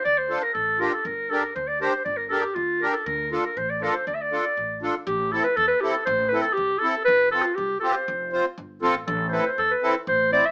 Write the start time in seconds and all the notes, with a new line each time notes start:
0.05 D2 D5
0.18 C5
0.29 D4 F4 A4
0.43 A#4
0.54 A1 A4
0.80 D4 F4 G4 A#4
0.93 A4
1.05 G1 A#4
1.30 D4 G4 A4 A#4
1.43 A#4
1.55 D2 C5
1.68 D5
1.81 D4 G4 A#4 C5
1.93 C5
2.05 G1 D5
2.17 A#4
2.27 A4 A#4
2.32 D4 G4 A#4
2.42 G4
2.55 D2 F4
2.81 D4 G4 A#4
2.93 A4
3.06 D2 A#4
3.32 D4 F4 A4
3.45 A#4
3.57 A1 C5
3.70 D5
3.82 D4 F4 A4 A#4
3.94 C5
4.07 D2 D5
4.14 E5
4.21 D5
4.32 D4 F4 A4
4.57 A1
4.82 D4 F4 A4
5.07 A1 G4
5.32 C4 E4 A4
5.44 B4
5.56 E2 A4
5.68 B4
5.81 C4 E4 G4 A4
5.94 A4
6.05 A1 C5
6.29 C4 E4 A4 B4
6.41 A4
6.53 G4
6.57 C2
6.79 C4 E4 A4
6.83 A4
7.05 F1 B4
7.31 C4 F4 A4
7.42 F4
7.55 C2 G4
7.80 C4 F4 G4 A4
7.93 C5
8.08 F1
8.33 C4 F4 C5
8.58 G1
8.82 A1 C4 F4 A4
9.07 A1 A4
9.29 C4 E4 A4 B4 C5
9.46 C5
9.58 E2 A4
9.71 B4
9.82 C4 E4 A4
10.07 A1 C5
10.32 C4 E4 C5 D5
10.45 E5